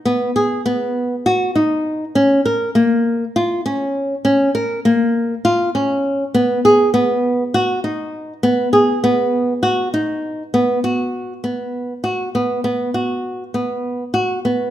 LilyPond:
\new Staff \with { instrumentName = "Nylon-string guitar" } { \time 7/8 \key b \lydian \tempo 4 = 100 b8 gis'8 b4 fis'8 dis'4 | cis'8 ais'8 ais4 eis'8 cis'4 | cis'8 ais'8 ais4 eis'8 cis'4 | b8 gis'8 b4 fis'8 dis'4 |
b8 gis'8 b4 fis'8 dis'4 | b8 fis'4 b4 fis'8 b8 | b8 fis'4 b4 fis'8 b8 | }